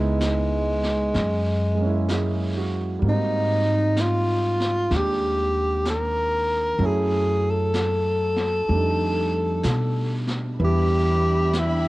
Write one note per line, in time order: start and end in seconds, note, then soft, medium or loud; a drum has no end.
0.00 1.11 C#2 medium
0.00 1.15 G#3 soft
0.00 2.68 G#3 medium
0.00 1.16 B3 soft
0.00 1.16 D#4 soft
0.00 1.17 E4 medium
0.21 brush sweep soft
0.21 snare soft
0.21 hi-hat pedal soft
0.83 snare soft
1.14 2.98 F#2 medium
1.14 brush sweep soft
1.14 snare soft
1.75 3.01 G#3 medium
1.75 3.01 A#3 soft
1.81 3.05 C#4 soft
1.85 3.07 E4 medium
2.08 2.84 G#4 soft
2.08 brush sweep soft
2.08 snare soft
2.08 hi-hat pedal medium
2.57 3.23 F#4 soft
2.99 4.86 G#2 medium
2.99 6.77 G3 soft
2.99 6.79 A#3 soft
2.99 brush sweep soft
3.07 6.81 C4 soft
3.07 4.02 D#4 medium
3.07 6.82 D#4 medium
3.96 brush sweep soft
3.96 snare soft
3.96 hi-hat pedal soft
4.01 4.97 F4 medium
4.60 snare soft
4.90 6.75 D#2 medium
4.90 6.79 G#3 soft
4.90 6.80 D4 soft
4.90 brush sweep soft
4.90 snare soft
4.96 5.87 G4 medium
5.85 brush sweep soft
5.85 snare soft
5.85 hi-hat pedal soft
5.90 6.87 A#4 medium
6.79 8.64 F#2 medium
6.79 8.69 F#3 medium
6.79 8.68 A3 soft
6.79 8.69 C#4 soft
6.79 8.69 E4 medium
6.79 brush sweep soft
6.85 7.52 G#4 medium
7.50 10.32 A4 medium
7.74 brush sweep soft
7.74 snare soft
7.74 hi-hat pedal soft
8.36 snare soft
8.68 9.60 F2 medium
8.68 10.58 G3 medium
8.68 10.60 A3 soft
8.68 10.59 D4 soft
8.68 brush sweep soft
8.74 10.62 D#4 soft
9.63 10.55 B2 medium
9.63 brush sweep soft
9.63 snare soft
9.63 hi-hat pedal medium
10.27 snare soft
10.57 11.88 E2 medium
10.57 11.88 G3 soft
10.57 11.88 B3 soft
10.57 11.88 D4 medium
10.57 11.88 D4 soft
10.57 11.88 E4 soft
10.57 11.88 G4 medium
10.57 11.88 E5 medium
10.57 11.88 B5 medium
10.57 brush sweep soft
10.65 11.60 G4 medium
11.53 brush sweep soft
11.53 snare soft
11.53 hi-hat pedal medium
11.59 11.88 E4 medium